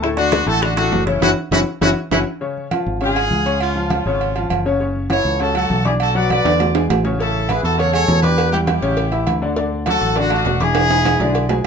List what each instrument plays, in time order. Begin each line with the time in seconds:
Already playing: fingered electric bass D2
0.02 upright piano A2 A3 A4, horn section C#4 E4, high bongo, high conga
0.17 upright piano D3 D4 D5, horn section D4 F#4, high conga, high timbale
0.32 high bongo, high conga, high timbale
0.46 fingered electric bass A1, upright piano A2 A3 A4, horn section F#4 A4, high bongo, high conga
0.62 upright piano D3 D4 D5, horn section D4 F#4, high bongo, high conga, high timbale
0.77 upright piano A2 A3 A4, horn section D4 F#4, high bongo, high conga, high timbale
0.92 fingered electric bass F#1, high bongo, low bongo, high conga, low timbale
1.06 upright piano C#3 C#4 C#5, horn section C#4 E4, high bongo, high conga, high timbale
1.21 fingered electric bass F#1, upright piano C#4 E4 F#4, horn section C#4 E4 F#4, high bongo, high conga, high timbale
1.51 fingered electric bass F#1, upright piano C#4 E4 F#4, horn section C#4 E4 F#4, high bongo, high conga, high timbale
1.81 fingered electric bass F#1, upright piano C#4 E4 F#4, horn section C#4 E4 F#4, high bongo, high conga, high timbale
2.11 fingered electric bass F#1, upright piano C#4 E4 F#4, horn section C#4 E4 F#4, high bongo, high conga, high timbale
2.41 upright piano C#3 C#4 C#5, high conga
2.57 high conga
2.71 upright piano F3 F4 F5, high conga, low agogo
2.86 fingered electric bass G#1, high conga
3.01 upright piano C#3 C#4 C#5, horn section F4 G#4, high conga, low agogo
3.16 upright piano G#3 G#4 G#5, high conga, low agogo
3.31 fingered electric bass C#2, high conga
3.45 upright piano C#4 C#5 C#6, low agogo
3.60 horn section C#4 F4, high conga, low agogo
3.76 upright piano F3 F4 F5, high conga
3.90 horn section F4, high conga, low agogo
3.94 horn section C#4
4.06 fingered electric bass G#1, upright piano C#3 C#4 C#5, high conga
4.21 high conga, low agogo
4.36 upright piano F3 F4 F5, high conga, low agogo
4.50 fingered electric bass F#1, high conga, low agogo
4.65 upright piano C#3 C#4 C#5, high conga
4.80 upright piano C#3 C#4 C#5, high conga
4.96 high conga
5.10 upright piano E3 E4 E5, horn section A4 C#5, high conga, low agogo
5.25 fingered electric bass C#2, high conga
5.40 upright piano C#3 C#4 C#5, horn section F#4 A4, high conga, low agogo
5.55 upright piano F#3 F#4 F#5, horn section F#4 A4, high conga, low agogo
5.70 fingered electric bass B1, high conga
5.85 upright piano D4 D5 D6, horn section E4 G#4, high conga, low agogo
6.00 horn section F#4 A4, high conga, low agogo
6.15 upright piano F#3 F#4 F#5, horn section B4 D5, high conga
6.30 horn section B4 D5, high conga, low agogo
6.45 fingered electric bass E2, upright piano D3 D4 D5, high timbale
6.60 high conga, low timbale, low agogo
6.75 upright piano G#3 G#4 G#5, high conga, high timbale, low agogo
6.89 fingered electric bass A1, high conga, low timbale, low agogo
7.04 upright piano C#3 C#4 C#5, low timbale
7.19 upright piano C#3 C#4 C#5, horn section E4 A4, cowbell, high conga
7.35 high conga
7.49 upright piano E3 E4 E5, horn section G#4 B4, cowbell, high conga, low agogo
7.63 fingered electric bass E2, horn section F#4 A4, cowbell, high conga
7.78 upright piano C#3 C#4 C#5, horn section A4 C#5, cowbell, high conga, low agogo
7.93 upright piano G#3 G#4 G#5, horn section A4 C#5, high conga, low agogo
8.08 fingered electric bass E2, cowbell, high conga, low timbale
8.22 upright piano D4 D5 D6, horn section G4 B4, cowbell, high conga, low agogo
8.38 cowbell, low agogo
8.53 upright piano G3 G4 G5, horn section E4 G4, high conga
8.66 horn section E4 G4, cowbell, high conga, low agogo
8.82 fingered electric bass A1, upright piano C#3 C#4 C#5, cowbell, high conga
8.97 cowbell, high conga, low agogo
9.12 upright piano E3 E4 E5, high conga, low agogo
9.27 fingered electric bass D2, cowbell, high conga, low agogo
9.42 upright piano D3 D4 D5, high conga
9.56 upright piano D3 D4 D5, cowbell, high conga
9.72 high conga
9.86 upright piano F#3 F#4 F#5, horn section F#4, cowbell, high conga, low agogo
9.90 horn section A4
10.01 fingered electric bass A1, cowbell, high conga
10.16 upright piano D3 D4 D5, horn section D4 F#4, cowbell, high conga, low agogo
10.30 upright piano A3 A4 A5, horn section D4 F#4, high conga, low agogo
10.45 fingered electric bass E1, cowbell, high conga, low timbale
10.60 upright piano D4 D5 D6, horn section E4 G#4, cowbell, high conga, low agogo
10.75 cowbell, high timbale, low agogo
10.90 upright piano G#3 G#4 G#5, high conga, high timbale
11.05 cowbell, high conga, high timbale, low agogo
11.20 fingered electric bass B1, upright piano D3 D4 D5, cowbell, high conga, low timbale
11.35 cowbell, high conga, low agogo
11.49 upright piano G#3 G#4 G#5, high conga, low timbale, low agogo